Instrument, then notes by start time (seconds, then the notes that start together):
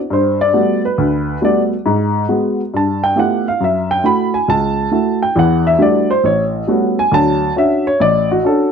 upright piano
0.10 G2 C5
0.41 D5
0.53 G3 A3 B3 F#4
0.85 B4
0.98 D2
1.42 G3 A3 B3 F#4 D5
1.86 G#2
2.29 G#3 B3 F#4
2.74 G2 A5
3.04 G5
3.16 A3 B3 E4 F4 G4 F#5
3.48 F5
3.61 F#2 E5
3.91 G5
4.04 A3 E4 F#4 B5
4.34 G#5
4.48 C#2 A5
4.91 A3 E4 F#4
5.23 G5
5.36 E2 E3 F#5
5.67 E5
5.79 G3 A3 D4 E4 F#4 D5
6.11 C5
6.24 A1 C#5
6.67 G3 A3 B3 C#4 F#4
6.99 G#5
7.12 D2 F#3 A5
7.56 C#4 D4 F#4 E5
7.87 C#5
8.00 A1 D5
8.31 F#4
8.44 C#4 D4 F#4 A4